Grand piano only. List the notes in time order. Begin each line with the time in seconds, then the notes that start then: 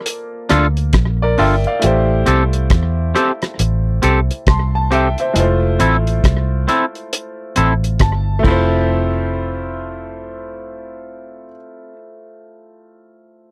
Already playing: A#3 F4 A4 D5
1.22 A#4 D5
1.39 E5 G5
1.67 D5 F5
1.79 A3 E4 G4
1.86 C5
4.48 A5 C6
4.75 A5
4.92 E5 G5
5.20 C5 E5
5.34 G#3 E4 F4
5.39 A3 C5
8.02 A5
8.39 A3
8.43 E4 F4
8.51 C5